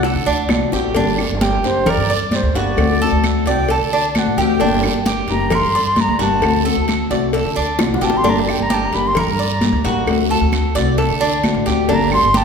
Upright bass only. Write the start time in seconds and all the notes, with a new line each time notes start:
Already playing: C2
0.16 D3
0.27 D2
0.50 C2
0.73 A1
0.95 G1
1.30 G1
1.63 F#1
1.97 G2
2.43 D2
2.54 G1
2.77 D2
3.12 D2
3.46 C2
3.80 D3
4.26 A1
4.37 D2
4.60 G1
4.94 G1
5.28 F#1
5.62 G2
6.08 D2
6.19 G1
6.42 D2
6.76 D2
7.11 C2
7.45 D3
7.57 D2
7.79 C2
8.01 A1
8.24 G1
8.58 G1
8.93 F#1
9.26 G2
9.72 D2
9.84 A1
10.07 D2
10.41 D2
10.76 C2
11.10 D3
11.54 A1
11.67 D2
11.89 G1
12.24 G1